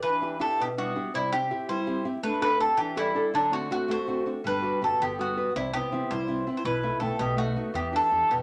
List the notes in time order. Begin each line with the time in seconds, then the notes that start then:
0.03 E3 D4 B4
0.21 D4 E4 G4
0.39 C4 D4 E4 G4 A4
0.60 B2 B3 G4
0.78 G3 B3 D4 E4 F#4
0.95 D4 E4 G4
1.14 C3 G3 E4
1.33 C4 E4 G4
1.50 C4 E4 G4
1.69 G3 E4 C5
1.87 C4 E4 G4
2.04 C4 E4 G4
2.23 A3 D4 B4
2.41 D4 G4 A4 B4
2.59 C4 D4 G4 A4
2.77 E3 D4 G4
2.96 G3 D4 E4 G4 A4
3.15 D4 G4 A4
3.34 D3 F#3 D4
3.51 A3 C4 D4 F#4
3.70 A3 C4 D4 F#4
3.88 A3 F#4 C5
4.07 C4 D4 F#4
4.26 C4 D4 F#4
4.44 G1 G3 D4 B4
4.62 F#4 G4 B4
4.82 G1 C4 F#4 G4 A4 B4
5.00 G1 D3 B3 G4
5.19 G3 B3 F#4 B4
5.37 F#4 G4 B4
5.55 C2 C3 G3 E4
5.73 C3 B3 E4 G4
5.92 C2 B3 C4 E4
6.11 C2 G3 E4 C5
6.27 B3 C4 E4
6.47 B3 C4 E4
6.57 E4 C5
6.65 B1 B2 E4 B4
6.83 A3 B3 E4
7.00 B1 A3 B3 C4 E4 A4
7.19 B1 B2 B3 G4
7.37 A3 B3 D#4 F#4
7.56 A3 B3 D#4
7.74 E2 E3 B3 G4
7.90 D4 E4 G4
7.96 A4
8.11 E2 D4 E4 G4
8.29 E2 B2 B3 G4